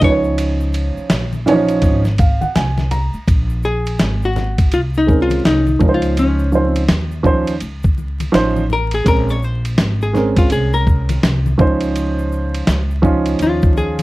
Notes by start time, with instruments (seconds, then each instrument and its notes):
0.01 upright bass C#2, upright piano F3 C#4 D#4 B4, hollow-body jazz guitar C#5, kick, ride, low conga, shaker
0.10 upright piano C#5
0.24 shaker
0.38 ride, shaker
0.60 shaker
0.74 ride, shaker
0.97 muted upright bass stroke, shaker
1.10 upright bass A#1, snare, hi-hat pedal, ride, shaker
1.33 high conga, shaker
1.46 upright piano E3 C#4 D#4 C#5, ride, low conga, shaker
1.52 upright piano F3
1.69 ride, shaker
1.82 upright bass G#1, kick, ride, shaker
2.05 snare, shaker
2.18 upright piano F5, kick, ride, shaker
2.41 upright piano F#5, muted upright bass stroke, high conga, shaker
2.55 upright bass C2, upright piano G#5, snare, hi-hat pedal, ride, low conga, shaker
2.78 snare, high conga, shaker
2.91 upright piano A#5, ride, low conga, shaker
3.13 muted upright bass stroke, shaker
3.28 upright bass A#1, kick, ride, shaker
3.50 shaker
3.63 hollow-body jazz guitar G#4, shaker
3.86 ride, shaker
3.99 upright bass G#1, snare, hi-hat pedal, ride, shaker
4.22 hollow-body jazz guitar F#4, shaker
4.36 snare, low conga, shaker
4.58 kick, ride, shaker
4.72 upright bass C2, hollow-body jazz guitar F4, ride, shaker
4.94 hollow-body jazz guitar D#4, shaker
5.07 upright piano G#3 C4 C#4 A#4, kick, high conga, shaker
5.22 hollow-body jazz guitar F4
5.30 ride, high conga, shaker
5.45 upright bass C2, hollow-body jazz guitar D#4, snare, hi-hat pedal, ride, shaker
5.67 high conga, shaker
5.79 upright bass C#2, upright piano F3 C#4 D#4 A#4, kick, low conga, shaker
5.89 upright piano C5
5.94 hollow-body jazz guitar F4
6.02 ride, shaker
6.17 hollow-body jazz guitar C#4, ride, shaker
6.39 shaker
6.52 upright piano F3 C#4 D#4 C5, shaker
6.66 hollow-body jazz guitar C4
6.75 ride, shaker
6.88 upright bass D#2, snare, hi-hat pedal, ride, shaker
7.12 shaker
7.23 upright piano F3 C#4 D#4 C5, kick, low conga, shaker
7.47 ride, shaker
7.61 upright bass C#2, ride, shaker
7.83 kick, shaker
7.98 high conga, shaker
8.20 ride, high conga, shaker
8.32 upright bass A1, upright piano F3 C#4 D#4 C5, snare, hi-hat pedal, ride, shaker
8.56 high conga, shaker
8.70 hollow-body jazz guitar A#4, low conga, shaker
8.91 hollow-body jazz guitar G#4, ride, shaker
9.04 upright bass A#1, upright piano G#3 C4 C#4 A#4, hollow-body jazz guitar A#4, kick, ride, shaker
9.29 hollow-body jazz guitar C#5, shaker
9.43 hollow-body jazz guitar C5, shaker
9.65 ride, shaker
9.78 upright bass G#1, snare, hi-hat pedal, ride, shaker
10.02 hollow-body jazz guitar G#4, shaker
10.13 upright piano G#3 C4 C#4 A#4, snare, low conga, shaker
10.36 hollow-body jazz guitar F4, kick, ride, shaker
10.50 upright bass C2, hollow-body jazz guitar G#4, ride, shaker
10.73 hollow-body jazz guitar A#4, shaker
10.87 kick, high conga, shaker
11.09 ride, high conga, shaker
11.23 upright bass C2, snare, hi-hat pedal, ride, shaker
11.46 high conga, shaker
11.58 upright bass C#2, upright piano F3 C#4 D#4 C5, kick, low conga, shaker
11.80 ride, shaker
11.96 ride, shaker
12.19 shaker
12.32 shaker
12.55 ride, shaker
12.67 upright bass C#2, snare, hi-hat pedal, ride, shaker
12.91 shaker
13.02 upright piano F3 C#4 D#4 F4, kick, low conga, shaker
13.26 ride, shaker
13.39 upright bass D#2, hollow-body jazz guitar F4, ride, shaker
13.62 kick, shaker
13.77 hollow-body jazz guitar G#4, high conga, shaker
13.99 ride, high conga, shaker